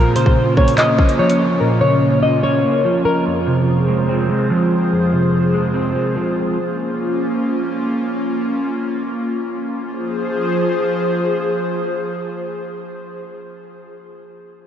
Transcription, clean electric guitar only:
Already playing: A#2
0.15 C#3
0.57 A#3
0.78 C#4
0.99 A#3
1.19 F3
1.60 A#2
1.82 C#3
2.23 A#3
2.43 C#4
2.64 A#3
2.85 F3
3.26 F2
3.47 C3
3.88 G#3
4.09 C4
4.29 G#3
4.50 F3
4.92 F2
5.12 C3
5.54 G#3
5.74 C4
5.95 G#3
6.16 F3

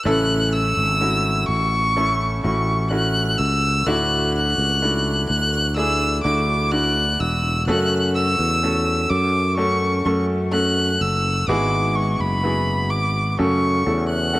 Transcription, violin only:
0.06 F#6
0.53 E6
1.49 C#6
2.44 C#6
2.91 F#6
3.38 E6
3.86 F#6
4.35 F#6
5.30 F#6
5.77 E6
6.24 D6
6.71 F#6
7.20 E6
7.68 F#6
8.15 E6
9.10 D6
9.57 C#6
10.05 C#6
10.52 F#6
11.01 E6
11.48 D6
11.95 C#6
12.20 B5
12.91 D6
13.31 D6
13.37 C#6
14.09 F#6

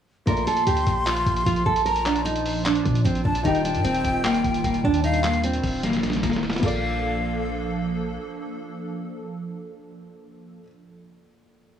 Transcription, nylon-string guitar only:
0.27 A#4
0.47 A4
0.67 G4
1.07 F4
1.46 F4
1.66 A4
1.85 A#4
2.06 D4
2.25 D#4
2.66 D4
3.05 C4
3.25 D4
3.45 D#4
3.65 D4
3.84 C4
4.24 A#3
4.64 A#3
4.85 D4
5.04 D#4
5.24 A#3
5.44 C4
5.84 A#3
6.23 A#3
6.63 A#3

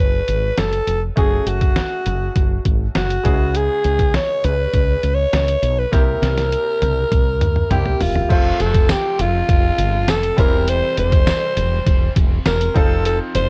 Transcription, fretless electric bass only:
0.00 F#1
0.28 G#1
0.58 F#1
0.87 F1
1.17 F#1
1.46 F#1
2.06 F#1
2.36 F#1
2.65 G#1
2.95 F#1
3.25 C#2
3.85 C#2
4.44 C#2
4.74 C#2
5.03 C#2
5.33 C#2
5.62 B1
5.93 C2
6.22 C2
6.82 C2
7.12 C2
7.41 D2
7.71 C2
8.01 E1
8.30 F1
8.60 F1
9.19 F1
9.49 F1
9.78 G1
10.08 F1
10.38 E1
10.97 E1
11.57 E1
11.87 E1
12.16 E1
12.46 E1
12.76 F1
13.35 F1

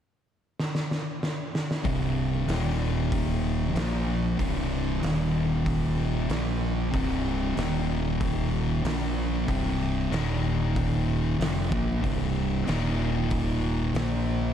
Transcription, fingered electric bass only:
1.85 C1
2.47 D#1
3.74 A#1
4.39 C1
5.03 D#1
6.29 A#1
6.94 C1
7.56 D#1
8.83 A#1
9.48 C1
10.11 D#1
11.39 F1
11.72 A#1
12.04 C1
12.67 D#1
13.94 A#1

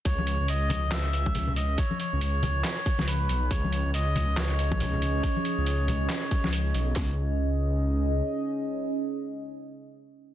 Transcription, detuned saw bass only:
0.05 C#2
0.40 C#2
0.92 C#2
2.13 C#2
2.99 C#2
3.29 B1
3.51 C#2
3.85 C#2
4.37 C#2
5.58 C#2
6.44 C#2
6.74 B1
6.96 C#2

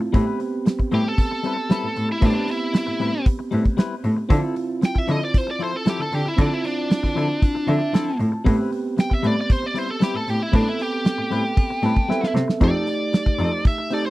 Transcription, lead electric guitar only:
0.94 G4
1.08 A4
2.12 E4
2.25 D4
2.51 E4
2.78 E4
4.86 G5
4.98 E5
5.11 D#5
5.25 D5
5.38 C5
5.51 D5
5.64 C5
5.77 A4
5.89 G4
6.02 A4
6.15 G4
6.28 E4
6.41 D4
6.54 E4
6.66 D4
9.00 G5
9.14 E5
9.27 D5
9.41 D5
9.53 C5
9.66 D5
9.78 C5
9.91 A4
10.03 G4
10.17 A4
10.30 G4
10.42 E4
10.55 D4
10.69 E4
10.82 G4
12.64 D5
13.67 E5
13.93 D5
14.06 C5

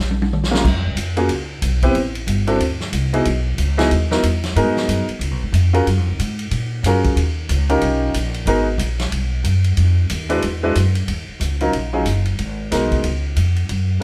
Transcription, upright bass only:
0.00 A#1
0.65 F#2
0.75 F2
0.86 C#2
0.95 F2
1.28 C#2
1.62 B1
1.95 A1
2.27 G1
2.59 D2
2.92 C2
3.26 B1
3.58 C#2
3.91 D#2
4.23 E2
4.56 G#2
4.88 F#2
5.08 muted upright bass stroke
5.19 C#2
5.31 B1
5.43 G#1
5.52 F2
5.86 F#2
5.97 F2
6.08 C#2
6.19 G#2
6.51 A#2
6.83 F#2
7.16 D#2
7.49 C#2
7.82 B1
8.14 A#1
8.46 G#1
8.78 A#1
9.11 B1
9.44 F#2
9.77 F2
10.10 D#2
10.43 E2
10.75 F#2
11.08 D#2
11.29 muted upright bass stroke
11.40 C#2
11.74 A#1
12.05 F#1
12.39 G#1
12.72 B1
13.04 C#2
13.36 F2
13.69 F#2

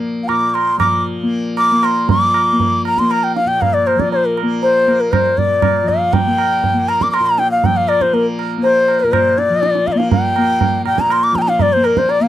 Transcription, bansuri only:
0.23 F5
0.28 D6
0.50 D6
0.54 C6
0.79 D6
1.58 D6
1.84 C6
2.10 D6
2.86 A#5
2.99 C6
3.11 A#5
3.23 G5
3.36 F5
3.48 G5
3.61 F5
3.74 D5
3.87 C5
4.00 D5
4.12 C5
4.25 A#4
4.62 C5
5.01 A#4
5.12 C5
5.38 D5
5.89 F5
6.13 G5
6.89 A#5
7.02 D6
7.11 C6 D6
7.26 A#5
7.39 G5
7.51 F5
7.65 G5
7.77 F5
7.89 D5
8.02 C5
8.14 A#4
8.63 C5
9.00 A#4
9.12 C5
9.38 D5
9.87 F5
9.92 D5
9.98 F5
10.12 G5
10.87 G5
11.00 A#5
11.12 C6
11.23 D6
11.35 G5 A#5
11.42 A#5
11.49 F5
11.62 D5
11.73 C5
11.85 A#4
11.98 C5
12.10 D5
12.22 F5

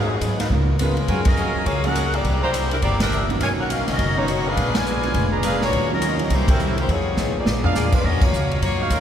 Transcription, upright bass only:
Already playing: G#2
0.21 G#2
0.50 C#2
1.08 F#2
1.55 muted upright bass stroke
1.66 C#2
2.24 C2
2.83 G1
3.41 B1
3.88 C2
3.98 F#1
4.57 A#1
5.14 F1
5.73 D#2
6.30 C2
6.88 F2
7.16 A1
7.46 A#1
7.75 E2
8.04 D#2
8.33 C#2
8.61 F#2
8.90 D#2

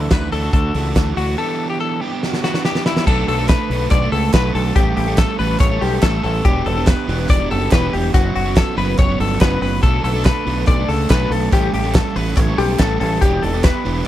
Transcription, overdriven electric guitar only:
Already playing: D3 E3 A3 D4 F#4
0.32 E3 A3 D4 F#4
0.42 A3 D4 F#4
0.74 E3 A3 D4 F#4
0.94 E3 A3 D4 F#4
1.16 E3 A3 D4 F#4
1.37 E3 B3 D4 G4
2.01 E3 B3 D4 G4
2.12 B3 D4 G4
2.44 E3 B3 D4 G4
2.65 E3 B3 D4 G4
2.86 E3 B3 D4 G4
3.07 F#3 A3 D4 A4
3.39 A3 D4 A4
3.71 B2 F#3 A3 D4 A4
4.02 A3 D4 A4
4.34 F#3 A3 D4 A4
4.75 G3 A3 C#4 A4
5.07 G3 A3 C#4 A4
5.39 A2 E3 G3 A3 C#4 A4
5.71 G3 A3 C#4 A4
6.02 G3 A3 C#4 A4
6.44 E3 B3 D4 G4
6.76 B3 D4 G4
7.07 E3 B3 D4 G4
7.40 B3 D4 G4
7.72 E3 B3 D4 G4
8.14 F#3 B3 C#4 F#4
8.44 F#3 B3 C#4 F#4
8.76 F#2 C#3 F#3 B3 C#4 F#4
9.08 F#3 B3 C#4 F#4
9.39 F#3 B3 C#4 F#4
9.82 F#3 A3 D4 A4
10.14 A3 D4 A4
10.45 B2 F#3 A3 D4 A4
10.77 A3 D4 A4
11.09 F#3 A3 D4 A4
11.52 G3 A3 C#4 A4
11.84 G3 A3 C#4 A4
12.15 A2 E3 G3 A3 C#4 A4
12.47 G3 A3 C#4 A4
12.79 G3 A3 C#4 A4
13.21 E3 B3 D4 G4
13.53 B3 D4 G4
13.85 E3 B3 D4 G4

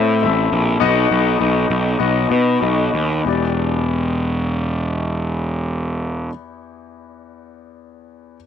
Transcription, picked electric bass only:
Already playing: A2
0.24 A1
0.52 A#1
0.81 B1
1.11 B1
1.41 B1
1.70 B1
2.00 B1
2.31 B2
2.62 B1
2.94 D#2
3.26 E1

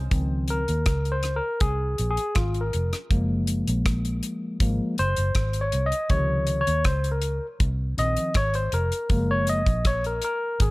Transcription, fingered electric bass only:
0.12 C#2
0.69 D#2
0.87 C#2
1.62 C2
1.99 A#1
2.36 G#1
2.74 F1
3.11 F#1
3.68 A#1
4.61 G#1
4.99 F#1
5.18 F#1
5.35 G#1
5.73 C2
6.11 C#2
6.67 D#2
6.86 C#2
7.61 C2
7.98 A#1
8.36 G#1
8.73 F1
9.10 F#1
9.67 A#1
10.61 G#1

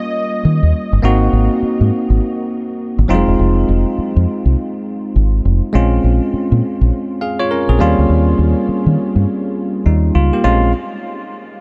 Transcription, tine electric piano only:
Already playing: G3 A#3 C#4 F4
1.02 A#3 C4 D#4 F#4
3.08 F#3 C4 D#4 F4
3.15 G#3
5.73 G#3 C4 C#4 F4
7.21 G#4 F5
7.39 F4 C#5
7.51 C#4 A#4
7.69 C4 G#4
7.79 G3 A#3 C#4 F4
9.86 G3 D#4
10.15 F4
10.33 A#3 G4
10.44 G#3 C4 C#4 F4

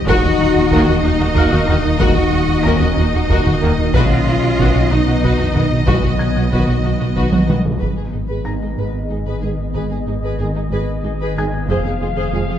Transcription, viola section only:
0.09 F#4
0.24 F#4
0.40 F#4
0.56 F#4
0.73 F#4
0.88 F#4
1.04 F#4
1.20 F#4
1.36 F#4
1.52 F#4
1.69 F#4
2.00 F#4
2.16 F#4
2.32 F#4
2.50 F#4
2.66 F#4
2.82 F#4
2.99 F#4
3.15 F#4
3.31 F#4
3.47 F#4
3.63 F#4
3.94 F#4
4.10 F#4
4.26 F#4
4.42 F#4
4.58 F#4
4.75 F#4
4.91 F#4
5.07 F#4
5.23 F#4
5.39 F#4
5.54 F#4
5.87 F#4
6.03 F#4
6.19 F#4
6.36 F#4
6.52 F#4
6.69 F#4
6.85 F#4
7.01 F#4
7.16 F#4
7.34 F#4
7.50 F#4
7.82 G#4
7.97 G#4
8.15 G#4
8.30 G#4
8.47 G#4
8.63 G#4
8.79 G#4
9.10 G#4
9.27 G#4
9.42 G#4
9.76 G#4
9.92 G#4
10.09 G#4
10.24 G#4
10.41 G#4
10.56 G#4
10.72 G#4
11.04 G#4
11.21 G#4
11.38 G#4
11.69 G#4
11.85 G#4
12.01 G#4
12.16 G#4
12.31 G#4
12.48 G#4

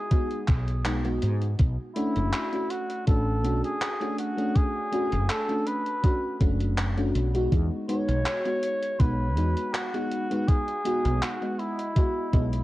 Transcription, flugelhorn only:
Already playing: G#4
1.96 E4
2.71 F#4
3.08 A4
3.65 G#4
4.19 F#4
4.56 G#4
5.30 A4
5.67 B4
7.89 C#5
9.00 B4
9.74 F#4
10.48 G#4
11.23 F#4
11.60 E4

